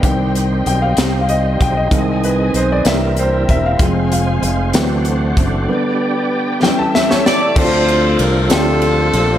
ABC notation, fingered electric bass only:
X:1
M:6/8
L:1/8
Q:3/8=64
K:Cm
V:1 name="Fingered electric bass" clef=bass
C,,2 =B,,, C,,2 B,,, | C,,2 =B,,, C,,2 =E,,, | F,,,2 F,,, D,,2 ^F,,, | z6 |
[K:Dm] D,,2 C,, D,,2 B,,, |]